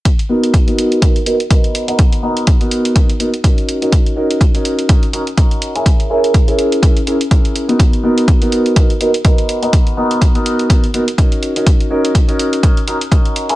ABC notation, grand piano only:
X:1
M:4/4
L:1/16
Q:"Swing 16ths" 1/4=124
K:B
V:1 name="Grand piano"
z2 [B,DFA]3 [B,DFA]3 z2 [B,DFA] z [B,DFA]3 [B,DFA]- | [B,DFA]2 [B,DFA]3 [B,DFA]3 z2 [B,DFA] z [CDFA]3 [CDFA]- | [CDFA]2 [CDFA]3 [CDFA]3 [CDFA] z [CDFA] z [CDFA]3 [CEGA]- | [CEGA]2 [CEGA]3 [CEGA]3 [CGA] z [CEGA] z [CEGA]3 [B,DFA]- |
[B,DFA]2 [B,DFA]3 [B,DFA]3 [B,DA] z [B,DFA] z [B,DFA]3 [B,DFA]- | [B,DFA]2 [B,DFA]3 [B,DFA]3 [B,DA] z [B,DFA] z [CDFA]3 [CDFA]- | [CDFA]2 [CDFA]3 [CDFA]3 [CDFA] z [CDFA] z [CDFA]3 [CEGA] |]